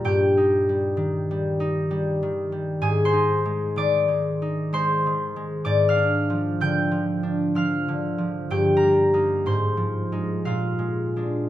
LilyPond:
<<
  \new Staff \with { instrumentName = "Harp" } { \time 3/4 \key ees \major \tempo 4 = 63 <g' bes' g'' bes''>2. | <aes' aes''>16 <c'' c'''>8. <d'' d'''>4 <c'' c'''>4 | <d'' d'''>16 <f'' f'''>8. <g'' g'''>4 <f'' f'''>4 | <g' g''>16 <bes' bes''>8. <c'' c'''>4 <f' f''>4 | }
  \new Staff \with { instrumentName = "Harp" } { \clef bass \time 3/4 \key ees \major \tuplet 3/2 { <g, g ees'>8 ees'8 g8 ees8 g8 ees'8 g8 ees8 g8 } | \tuplet 3/2 { aes,8 ees'8 aes8 ees8 aes8 ees'8 aes8 ees8 aes8 } | \tuplet 3/2 { aes,8 d'8 f8 d8 f8 d'8 f8 d8 f8 } | \tuplet 3/2 { g,8 g8 <bes ees'>8 aes,8 f8 <aes ees'>8 bes,8 aes8 <aes d'>8 } | }
>>